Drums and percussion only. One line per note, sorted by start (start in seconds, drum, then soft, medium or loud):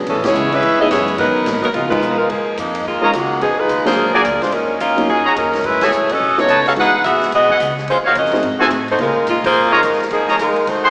0.06 kick soft
0.06 ride medium
0.24 snare medium
0.24 ride medium
0.35 hi-hat pedal medium
0.52 ride soft
0.62 kick soft
0.62 ride medium
0.91 kick soft
0.91 snare medium
0.91 hi-hat pedal medium
0.91 ride medium
1.08 ride medium
1.18 kick soft
1.18 ride medium
1.46 kick soft
1.46 snare medium
1.46 hi-hat pedal medium
1.46 ride medium
1.64 ride soft
1.74 kick soft
1.74 ride medium
1.92 kick medium
1.92 crash medium
2.02 hi-hat pedal medium
2.30 kick soft
2.30 ride medium
2.57 kick soft
2.57 hi-hat pedal medium
2.57 ride medium
2.75 ride medium
2.86 kick soft
3.13 kick soft
3.13 hi-hat pedal medium
3.13 ride medium
3.41 kick soft
3.41 ride medium
3.69 kick soft
3.69 hi-hat pedal medium
3.69 ride medium
3.86 snare medium
3.86 ride medium
4.25 kick soft
4.25 hi-hat pedal medium
4.25 ride medium
4.42 snare soft
4.42 ride soft
4.52 kick soft
4.52 ride medium
4.80 kick soft
4.80 hi-hat pedal medium
4.80 ride medium
4.98 ride medium
5.08 kick soft
5.36 kick soft
5.36 hi-hat pedal medium
5.36 ride medium
5.53 snare medium
5.53 ride soft
5.64 kick soft
5.64 ride medium
5.81 snare medium
5.81 ride medium
5.92 hi-hat pedal medium
6.09 ride medium
6.20 kick soft
6.37 snare soft
6.48 kick soft
6.48 hi-hat pedal medium
6.48 ride medium
6.66 snare soft
6.66 ride soft
6.76 kick soft
6.76 ride medium
7.04 kick soft
7.04 hi-hat pedal medium
7.04 ride medium
7.21 snare soft
7.21 ride soft
7.32 kick soft
7.32 ride medium
7.49 kick medium
7.60 kick soft
7.60 hi-hat pedal medium
7.60 ride medium
7.77 snare soft
7.88 kick soft
7.88 ride medium
8.15 kick soft
8.15 hi-hat pedal medium
8.15 ride medium
8.25 snare soft
8.32 snare soft
8.32 ride soft
8.43 kick soft
8.43 ride medium
8.60 snare soft
8.70 kick soft
8.70 hi-hat pedal medium
8.70 ride medium
8.88 ride soft
8.98 kick soft
8.98 ride medium
9.27 kick soft
9.27 hi-hat pedal medium
9.27 ride medium
9.44 kick medium
9.44 crash medium
9.83 kick soft
9.83 hi-hat pedal medium
9.83 ride medium
9.93 snare soft
10.00 snare soft
10.00 ride soft
10.10 kick soft
10.10 ride medium
10.28 snare soft
10.39 kick soft
10.39 hi-hat pedal medium
10.39 ride medium
10.56 ride soft
10.67 kick soft
10.67 ride medium